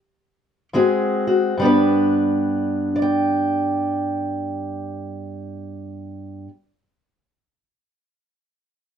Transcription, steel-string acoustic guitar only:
0, 0, Header, 1, 2, 480
1, 0, Start_track
1, 0, Tempo, 821918
1, 913, Time_signature, 4, 2, 24, 8
1, 913, Tempo, 848656
1, 5103, End_track
2, 0, Start_track
2, 0, Title_t, "Steel-string acoustic guitar"
2, 0, Program_c, 0, 25
2, 429, Note_on_c, 0, 44, 62
2, 432, Note_on_c, 0, 56, 54
2, 436, Note_on_c, 0, 60, 53
2, 440, Note_on_c, 0, 66, 55
2, 444, Note_on_c, 0, 68, 58
2, 737, Note_off_c, 0, 66, 0
2, 743, Note_on_c, 0, 66, 55
2, 878, Note_off_c, 0, 44, 0
2, 895, Note_off_c, 0, 56, 0
2, 897, Note_off_c, 0, 60, 0
2, 898, Note_off_c, 0, 66, 0
2, 900, Note_off_c, 0, 68, 0
2, 919, Note_on_c, 0, 43, 60
2, 931, Note_on_c, 0, 55, 62
2, 943, Note_on_c, 0, 59, 56
2, 954, Note_on_c, 0, 62, 56
2, 963, Note_on_c, 0, 71, 56
2, 1699, Note_off_c, 0, 62, 0
2, 1701, Note_on_c, 0, 74, 71
2, 1734, Note_off_c, 0, 71, 0
2, 1736, Note_on_c, 0, 79, 69
2, 3684, Note_off_c, 0, 74, 0
2, 3685, Note_off_c, 0, 43, 0
2, 3691, Note_off_c, 0, 55, 0
2, 3697, Note_off_c, 0, 59, 0
2, 3702, Note_off_c, 0, 79, 0
2, 5103, End_track
0, 0, End_of_file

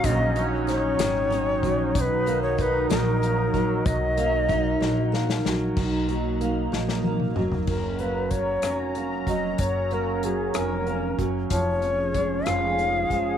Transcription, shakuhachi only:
0, 0, Header, 1, 2, 480
1, 0, Start_track
1, 0, Tempo, 636943
1, 34, Time_signature, 6, 3, 24, 8
1, 10082, End_track
2, 0, Start_track
2, 0, Title_t, "Shakuhachi"
2, 0, Program_c, 0, 77
2, 36, Note_on_c, 0, 75, 98
2, 310, Note_off_c, 0, 75, 0
2, 510, Note_on_c, 0, 73, 97
2, 1476, Note_off_c, 0, 73, 0
2, 1476, Note_on_c, 0, 73, 83
2, 1512, Note_on_c, 0, 71, 90
2, 1519, Note_off_c, 0, 73, 0
2, 1820, Note_off_c, 0, 71, 0
2, 1825, Note_on_c, 0, 73, 82
2, 1940, Note_off_c, 0, 73, 0
2, 1940, Note_on_c, 0, 73, 77
2, 1970, Note_on_c, 0, 71, 84
2, 1978, Note_off_c, 0, 73, 0
2, 2179, Note_off_c, 0, 71, 0
2, 2184, Note_on_c, 0, 70, 87
2, 2908, Note_on_c, 0, 75, 83
2, 2920, Note_off_c, 0, 70, 0
2, 3868, Note_off_c, 0, 75, 0
2, 5790, Note_on_c, 0, 70, 63
2, 6029, Note_on_c, 0, 71, 66
2, 6040, Note_off_c, 0, 70, 0
2, 6260, Note_on_c, 0, 73, 80
2, 6271, Note_off_c, 0, 71, 0
2, 6745, Note_off_c, 0, 73, 0
2, 6997, Note_on_c, 0, 75, 67
2, 7234, Note_on_c, 0, 73, 69
2, 7245, Note_off_c, 0, 75, 0
2, 7484, Note_on_c, 0, 70, 66
2, 7496, Note_off_c, 0, 73, 0
2, 7722, Note_on_c, 0, 68, 67
2, 7734, Note_off_c, 0, 70, 0
2, 7954, Note_on_c, 0, 70, 75
2, 7965, Note_off_c, 0, 68, 0
2, 8494, Note_off_c, 0, 70, 0
2, 8674, Note_on_c, 0, 73, 94
2, 9396, Note_on_c, 0, 77, 88
2, 9407, Note_off_c, 0, 73, 0
2, 10082, Note_off_c, 0, 77, 0
2, 10082, End_track
0, 0, End_of_file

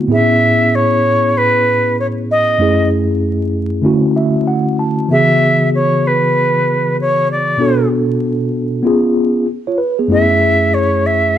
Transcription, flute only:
0, 0, Header, 1, 2, 480
1, 0, Start_track
1, 0, Key_signature, 3, "minor"
1, 0, Tempo, 625000
1, 73, Time_signature, 4, 2, 24, 8
1, 8740, End_track
2, 0, Start_track
2, 0, Title_t, "Flute"
2, 0, Program_c, 0, 73
2, 96, Note_on_c, 0, 76, 108
2, 573, Note_on_c, 0, 73, 102
2, 585, Note_off_c, 0, 76, 0
2, 1053, Note_on_c, 0, 71, 97
2, 1064, Note_off_c, 0, 73, 0
2, 1523, Note_off_c, 0, 71, 0
2, 1531, Note_on_c, 0, 73, 84
2, 1583, Note_off_c, 0, 73, 0
2, 1771, Note_on_c, 0, 75, 94
2, 2211, Note_off_c, 0, 75, 0
2, 3927, Note_on_c, 0, 76, 109
2, 4369, Note_off_c, 0, 76, 0
2, 4412, Note_on_c, 0, 73, 96
2, 4660, Note_on_c, 0, 71, 83
2, 4671, Note_off_c, 0, 73, 0
2, 5366, Note_off_c, 0, 71, 0
2, 5378, Note_on_c, 0, 73, 91
2, 5590, Note_off_c, 0, 73, 0
2, 5613, Note_on_c, 0, 74, 83
2, 6052, Note_off_c, 0, 74, 0
2, 7770, Note_on_c, 0, 76, 101
2, 8245, Note_on_c, 0, 73, 92
2, 8256, Note_off_c, 0, 76, 0
2, 8493, Note_on_c, 0, 76, 89
2, 8505, Note_off_c, 0, 73, 0
2, 8740, Note_off_c, 0, 76, 0
2, 8740, End_track
0, 0, End_of_file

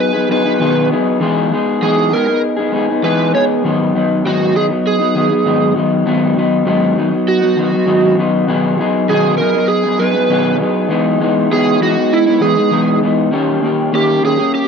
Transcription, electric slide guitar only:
0, 0, Header, 1, 2, 480
1, 0, Start_track
1, 0, Key_signature, 5, "minor"
1, 0, Tempo, 606061
1, 953, Time_signature, 4, 2, 24, 8
1, 11626, End_track
2, 0, Start_track
2, 0, Title_t, "Electric slide guitar"
2, 0, Program_c, 0, 29
2, 2, Note_on_c, 0, 71, 95
2, 221, Note_off_c, 0, 71, 0
2, 251, Note_on_c, 0, 71, 93
2, 691, Note_off_c, 0, 71, 0
2, 1447, Note_on_c, 0, 68, 77
2, 1688, Note_off_c, 0, 68, 0
2, 1689, Note_on_c, 0, 70, 96
2, 1906, Note_off_c, 0, 70, 0
2, 2408, Note_on_c, 0, 71, 78
2, 2626, Note_off_c, 0, 71, 0
2, 2651, Note_on_c, 0, 73, 96
2, 2713, Note_off_c, 0, 73, 0
2, 3379, Note_on_c, 0, 66, 85
2, 3592, Note_off_c, 0, 66, 0
2, 3612, Note_on_c, 0, 68, 99
2, 3675, Note_off_c, 0, 68, 0
2, 3856, Note_on_c, 0, 68, 85
2, 4535, Note_off_c, 0, 68, 0
2, 5767, Note_on_c, 0, 66, 95
2, 6450, Note_off_c, 0, 66, 0
2, 7202, Note_on_c, 0, 68, 83
2, 7422, Note_off_c, 0, 68, 0
2, 7426, Note_on_c, 0, 70, 90
2, 7667, Note_on_c, 0, 68, 92
2, 7678, Note_off_c, 0, 70, 0
2, 7915, Note_on_c, 0, 71, 96
2, 7918, Note_off_c, 0, 68, 0
2, 8362, Note_off_c, 0, 71, 0
2, 9129, Note_on_c, 0, 68, 105
2, 9365, Note_off_c, 0, 68, 0
2, 9368, Note_on_c, 0, 66, 87
2, 9606, Note_off_c, 0, 66, 0
2, 9606, Note_on_c, 0, 64, 85
2, 9822, Note_off_c, 0, 64, 0
2, 9835, Note_on_c, 0, 68, 85
2, 10280, Note_off_c, 0, 68, 0
2, 11049, Note_on_c, 0, 67, 88
2, 11284, Note_off_c, 0, 67, 0
2, 11289, Note_on_c, 0, 68, 97
2, 11518, Note_off_c, 0, 68, 0
2, 11521, Note_on_c, 0, 67, 87
2, 11626, Note_off_c, 0, 67, 0
2, 11626, End_track
0, 0, End_of_file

